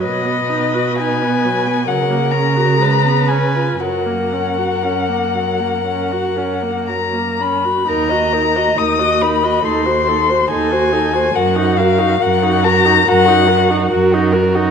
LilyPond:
<<
  \new Staff \with { instrumentName = "Violin" } { \time 4/4 \key fis \major \tempo 4 = 67 dis''4 gis''4 fis''8 ais''4 gis''8 | fis''2. ais''8 b''8 | \key ees \minor bes''4 ees'''8 ces'''8 c'''4 aes''4 | ges''8 f''8 ges''8 bes''8 ges''4 r4 | }
  \new Staff \with { instrumentName = "Violin" } { \time 4/4 \key fis \major b'2 ais'4 b'4 | ais'2.~ ais'8. r16 | \key ees \minor bes'16 ees''16 bes'16 ees''16 bes'16 ees''16 bes'16 ees''16 a'16 c''16 a'16 c''16 a'16 c''16 a'16 c''16 | bes'16 ges'16 bes'16 ges'16 bes'16 ges'16 bes'16 ges'16 bes'16 ges'16 bes'16 ges'16 bes'16 ges'16 bes'16 ges'16 | }
  \new Staff \with { instrumentName = "Viola" } { \time 4/4 \key fis \major fis16 b16 dis'16 fis'16 dis'16 b16 fis16 b16 fis16 ais16 cis'16 fis'16 gis16 b16 cis'16 eis'16 | fis16 ais16 cis'16 fis'16 cis'16 ais16 fis16 ais16 cis'16 fis'16 cis'16 ais16 fis16 ais16 cis'16 fis'16 | \key ees \minor ees'16 ges'16 ees'16 ges'16 ees'16 ges'16 ees'16 ges'16 ees'16 ges'16 ees'16 ges'16 ees'16 ges'16 ees'16 ges'16 | ges'16 ees'16 ges'16 ees'16 ges'16 ees'16 ges'16 ees'16 ges'16 ees'16 ges'16 ees'16 ges'16 ees'16 ges'16 ees'16 | }
  \new Staff \with { instrumentName = "Cello" } { \clef bass \time 4/4 \key fis \major b,2 cis2 | fis,1 | \key ees \minor ees,4 ees,4 ees,4 ees,4 | ges,4 ges,4 ges,4 ges,4 | }
>>